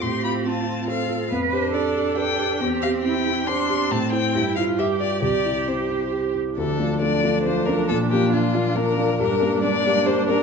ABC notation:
X:1
M:3/4
L:1/8
Q:1/4=138
K:C
V:1 name="Violin"
c' b a2 f2 | z c d2 g2 | z f g2 c'2 | a g2 f e d |
d2 c3 z | [K:Dm] A2 d2 c B | A G F2 B2 | B2 d2 c B |]
V:2 name="Cello"
G2 F2 A2 | B2 A4 | G2 E2 C2- | C2 E2 G2 |
G4- G z | [K:Dm] F,6- | F,6 | G,6 |]
V:3 name="Grand piano"
A,, F C F c F | F,, G D G B G | E,, G C G c G | A,, [Ec] G,, [EG] G,, [FG] |
C,, E C E G E | [K:Dm] D,, [A,DF] [A,DF] [A,DF] [A,DF] [A,DF] | B,, [B,DF] [B,DF] [B,DF] [B,DF] [B,DF] | G,, [B,DG] [B,DG] [B,DG] [B,DG] [B,DG] |]
V:4 name="Viola"
C6 | B, D4- D | C4 D2 | C2 E F G2 |
G4- G z | [K:Dm] D6- | D6 | D6 |]